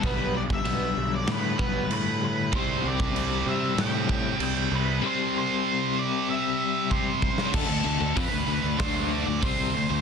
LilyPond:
<<
  \new Staff \with { instrumentName = "Lead electric guitar" } { \time 4/4 \key c \lydian \tempo 4 = 96 b'8 d''16 e''4 d''16 b'4 b'8 b'8 | c''8 d''4 e''8 g''4 g''8 b'8 | c''8 c''4 d''8 e''4 c''4 | a'4 b'4 c''8 d''8 c''4 | }
  \new Staff \with { instrumentName = "Clean electric guitar" } { \clef bass \time 4/4 \key c \lydian <b, g b>8 <b, g>8 <b, g b>8 <b, g>8 <b, g>8 <b, g b>8 <b, g>8 <b, g>8 | r1 | r1 | r1 | }
  \new Staff \with { instrumentName = "Distorted electric guitar" } { \clef bass \time 4/4 \key c \lydian r1 | <c g c'>1 | <c g c'>1 | <d a>16 <d a>16 <d a>16 <d a>16 <f c'>16 <d a>16 <d a>16 <d a>16 <d a d'>8. <d a>16 <c g c'>8 <d a>16 <d a>16 | }
  \new Staff \with { instrumentName = "Overdriven electric guitar" } { \clef bass \time 4/4 \key c \lydian <g, d g>1 | <c g c'>1 | <c g c'>1 | <d a>16 <d a>16 <d a>16 <d a>16 <f c'>16 <d a>16 <d a>16 <d a>16 <d a d'>8. <d a>16 <c g c'>8 <d a>16 <d a>16 | }
  \new Staff \with { instrumentName = "Fingered electric bass" } { \clef bass \time 4/4 \key c \lydian b,,4 b,,8 b,,8 a,8 b,,8 a,4 | c,8 c,8 c,8 c8 a,4 c,8 c,8 | r1 | d,16 d,16 d,16 d,16 f,16 d,16 d,16 d,16 d,8. d,16 c,8 d,16 d,16 | }
  \new DrumStaff \with { instrumentName = "Drums" } \drummode { \time 4/4 <cymc bd>8. bd16 cymc4 <cymc sn>8 bd8 cymc4 | <cymc bd>8. bd16 cymc4 <cymc sn>8 bd8 cymc4 | r4 r4 r4 bd8 bd16 sn16 | <cymc bd>4 <hho bd>4 <hho bd sn>4 <hho bd>4 | }
>>